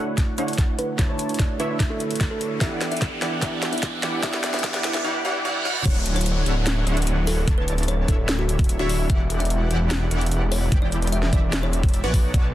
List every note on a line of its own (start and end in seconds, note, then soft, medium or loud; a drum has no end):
0.00 0.36 D3 medium
0.00 0.97 A3 medium
0.00 0.36 D4 medium
0.00 0.98 D4 medium
0.00 0.36 E4 medium
0.00 0.99 E4 medium
0.00 1.00 F#4 medium
0.00 0.36 C#5 medium
0.00 1.01 C#5 medium
0.00 0.36 F#5 medium
0.00 riser medium
0.18 kick medium
0.18 snare soft
0.18 closed hi-hat medium
0.38 0.96 D3 medium
0.38 0.96 D4 medium
0.38 0.96 E4 medium
0.38 0.96 C#5 medium
0.38 0.96 F#5 medium
0.38 closed hi-hat medium
0.48 closed hi-hat soft
0.53 closed hi-hat medium
0.58 kick medium
0.58 snare medium
0.58 closed hi-hat medium
0.79 0.98 B4 medium
0.79 closed hi-hat medium
0.97 1.57 D3 medium
0.97 1.56 A3 medium
0.97 1.57 D4 medium
0.97 1.57 E4 medium
0.97 1.58 F#4 medium
0.97 1.57 C#5 medium
0.97 1.58 C#5 loud
0.97 1.57 A5 loud
0.97 kick medium
0.97 snare medium
0.97 closed hi-hat medium
1.09 1.29 C#5 medium
1.19 closed hi-hat medium
1.29 closed hi-hat soft
1.34 closed hi-hat medium
1.39 1.52 D5 medium
1.39 kick medium
1.39 snare medium
1.39 closed hi-hat medium
1.58 2.59 D3 medium
1.58 2.58 A3 medium
1.58 2.58 D4 medium
1.58 2.59 D4 medium
1.58 2.59 E4 medium
1.58 2.59 F#4 medium
1.58 1.79 B4 medium
1.58 2.59 C#5 medium
1.58 2.59 E5 medium
1.58 closed hi-hat medium
1.80 kick medium
1.80 snare medium
1.80 closed hi-hat medium
1.90 2.16 A4 medium
2.00 closed hi-hat medium
2.11 closed hi-hat soft
2.16 closed hi-hat medium
2.21 kick loud
2.21 snare medium
2.21 closed hi-hat medium
2.31 2.50 A4 medium
2.41 closed hi-hat medium
2.59 3.20 E3 medium
2.59 3.19 B3 medium
2.59 3.19 D4 medium
2.59 3.20 E4 medium
2.59 3.20 G4 medium
2.59 3.20 D5 medium
2.59 2.81 E5 medium
2.59 3.20 F#5 medium
2.59 kick medium
2.59 snare medium
2.59 closed hi-hat medium
2.63 3.21 D5 medium
2.81 snare medium
2.81 closed hi-hat medium
2.92 3.18 E5 medium
2.92 closed hi-hat soft
2.97 closed hi-hat medium
3.02 kick loud
3.02 snare medium
3.02 closed hi-hat medium
3.20 3.41 E3 medium
3.20 3.39 B3 medium
3.20 3.40 D4 medium
3.20 3.41 E4 medium
3.20 3.41 G4 medium
3.20 3.41 D5 medium
3.20 3.42 E5 medium
3.20 3.41 F#5 medium
3.20 snare medium
3.20 closed hi-hat medium
3.40 4.01 E3 medium
3.40 4.00 B3 medium
3.40 4.00 D4 medium
3.40 4.01 E4 medium
3.40 4.01 G4 medium
3.40 4.01 D5 medium
3.40 3.62 E5 medium
3.40 4.01 F#5 loud
3.40 kick loud
3.40 snare medium
3.40 closed hi-hat medium
3.44 4.02 D5 loud
3.62 snare medium
3.62 closed hi-hat medium
3.73 3.99 E5 medium
3.73 closed hi-hat soft
3.78 closed hi-hat medium
3.83 kick loud
3.83 snare medium
3.83 closed hi-hat medium
4.01 4.22 E3 medium
4.01 4.20 B3 medium
4.01 4.21 D4 medium
4.01 4.22 E4 medium
4.01 4.22 G4 medium
4.01 4.22 D5 medium
4.01 4.23 E5 medium
4.01 4.22 F#5 medium
4.01 snare medium
4.01 closed hi-hat medium
4.21 4.62 E3 medium
4.21 4.61 B3 medium
4.21 4.62 D4 medium
4.21 4.62 E4 medium
4.21 4.62 G4 medium
4.21 4.63 G4 medium
4.21 4.62 D5 medium
4.21 4.63 D5 loud
4.21 4.43 E5 loud
4.21 4.62 F#5 loud
4.21 kick loud
4.21 snare loud
4.21 closed hi-hat medium
4.33 snare medium
4.44 snare medium
4.44 closed hi-hat medium
4.54 4.62 E5 medium
4.54 snare medium
4.54 closed hi-hat soft
4.59 5.02 B3 medium
4.59 5.02 D4 medium
4.59 closed hi-hat medium
4.64 5.03 E3 medium
4.64 5.03 E4 medium
4.64 5.03 G4 medium
4.64 5.03 D5 medium
4.64 5.04 D5 loud
4.64 4.83 E5 loud
4.64 5.03 F#5 loud
4.64 kick loud
4.64 snare loud
4.64 closed hi-hat medium
4.74 snare medium
4.84 snare loud
4.84 closed hi-hat medium
4.94 5.03 E5 medium
4.94 snare medium
5.04 5.23 E3 medium
5.04 5.23 E4 medium
5.04 5.23 G4 medium
5.04 5.23 D5 medium
5.04 5.23 F#5 loud
5.04 reverse cymbal medium
5.25 5.43 E3 medium
5.25 5.43 E4 medium
5.25 5.43 G4 medium
5.25 5.43 D5 medium
5.25 5.43 F#5 loud
5.45 5.64 E3 medium
5.45 5.64 E4 medium
5.45 5.64 G4 medium
5.45 5.64 D5 medium
5.45 5.64 F#5 loud
5.65 5.84 E3 loud
5.65 5.84 E4 medium
5.65 5.84 F#4 medium
5.65 5.84 D5 medium
5.65 5.84 F#5 loud
5.85 6.44 D1 loud
5.85 6.44 D3 medium
5.85 6.44 D4 medium
5.85 6.44 C#5 medium
5.85 6.05 C#5 loud
5.85 kick loud
5.85 closed hi-hat medium
5.85 crash loud
5.85 downlifter medium
6.06 closed hi-hat medium
6.16 6.42 C#5 medium
6.16 closed hi-hat medium
6.21 closed hi-hat medium
6.26 closed hi-hat medium
6.46 6.85 D1 medium
6.46 6.84 D3 medium
6.46 6.84 D4 medium
6.46 6.84 E4 medium
6.46 6.84 C#5 medium
6.46 6.84 F#5 medium
6.46 closed hi-hat medium
6.67 snare loud
6.67 closed hi-hat medium
6.87 7.46 D1 loud
6.87 7.45 D3 medium
6.87 7.45 D4 medium
6.87 7.45 E4 medium
6.87 7.45 C#5 medium
6.87 7.45 F#5 medium
6.87 closed hi-hat medium
6.97 closed hi-hat medium
7.02 closed hi-hat medium
7.07 closed hi-hat medium
7.27 7.47 A4 loud
7.27 open hi-hat medium
7.48 8.06 D1 loud
7.48 8.06 D3 medium
7.48 8.06 D4 medium
7.48 8.06 E4 medium
7.48 8.06 C#5 medium
7.48 8.06 A5 loud
7.48 kick loud
7.48 closed hi-hat medium
7.58 7.77 B4 loud
7.68 closed hi-hat medium
7.78 closed hi-hat soft
7.83 closed hi-hat medium
7.88 8.01 C#5 medium
7.88 closed hi-hat medium
8.08 8.77 D1 medium
8.08 8.77 D3 medium
8.08 8.77 D4 medium
8.08 8.77 E4 medium
8.08 8.28 A4 loud
8.08 8.77 C#5 medium
8.08 8.77 E5 medium
8.08 kick medium
8.08 closed hi-hat medium
8.29 snare loud
8.29 closed hi-hat medium
8.39 8.65 F#4 medium
8.49 closed hi-hat medium
8.59 kick loud
8.59 closed hi-hat soft
8.64 closed hi-hat medium
8.69 closed hi-hat medium
8.79 9.08 D1 loud
8.79 9.07 D3 medium
8.79 9.07 D4 medium
8.79 9.07 E4 medium
8.79 8.99 F#4 loud
8.79 9.07 C#5 medium
8.79 9.07 E5 medium
8.89 open hi-hat medium
9.10 9.69 E1 loud
9.10 9.68 E3 medium
9.10 9.68 E4 medium
9.10 9.68 G4 medium
9.10 9.68 D5 medium
9.10 9.29 E5 medium
9.10 9.68 F#5 loud
9.10 kick loud
9.10 closed hi-hat medium
9.30 closed hi-hat medium
9.40 9.66 E5 loud
9.40 closed hi-hat soft
9.45 closed hi-hat medium
9.50 closed hi-hat medium
9.71 10.09 E1 medium
9.71 10.09 E3 medium
9.71 10.09 E4 medium
9.71 10.09 G4 medium
9.71 10.09 D5 medium
9.71 10.09 F#5 medium
9.71 closed hi-hat medium
9.91 snare loud
9.91 closed hi-hat medium
10.11 10.70 E1 loud
10.11 10.70 E3 medium
10.11 10.70 E4 medium
10.11 10.70 G4 medium
10.11 10.70 D5 medium
10.11 10.70 F#5 loud
10.11 closed hi-hat medium
10.21 closed hi-hat soft
10.26 closed hi-hat medium
10.31 closed hi-hat medium
10.52 10.71 C#5 loud
10.52 open hi-hat medium
10.72 11.31 E1 loud
10.72 11.30 E3 medium
10.72 11.30 E4 medium
10.72 11.30 G4 medium
10.72 11.30 D5 medium
10.72 11.30 G5 loud
10.72 kick loud
10.72 closed hi-hat medium
10.82 11.01 D5 loud
10.92 closed hi-hat medium
11.02 closed hi-hat soft
11.07 closed hi-hat medium
11.12 11.25 E5 medium
11.12 closed hi-hat medium
11.23 snare soft
11.33 12.05 E1 medium
11.33 12.02 E3 medium
11.33 12.02 E4 medium
11.33 12.02 G4 medium
11.33 12.02 D5 medium
11.33 11.52 D5 loud
11.33 12.02 E5 medium
11.33 kick medium
11.33 closed hi-hat medium
11.53 snare loud
11.53 closed hi-hat medium
11.63 11.89 C#5 medium
11.73 closed hi-hat medium
11.83 kick loud
11.83 closed hi-hat soft
11.89 closed hi-hat medium
11.94 closed hi-hat medium
12.04 12.32 B1 loud
12.04 12.32 B3 medium
12.04 12.32 F#4 medium
12.04 12.23 B4 medium
12.04 12.32 C#5 medium
12.04 12.32 D5 medium
12.04 12.32 F#5 medium
12.14 kick medium
12.14 open hi-hat medium
12.34 12.54 B1 loud
12.34 12.54 B3 medium
12.34 12.54 F#4 medium
12.34 12.54 C#5 medium
12.34 12.53 D5 loud
12.34 12.54 D5 medium
12.34 12.54 A5 loud
12.34 kick loud
12.34 closed hi-hat medium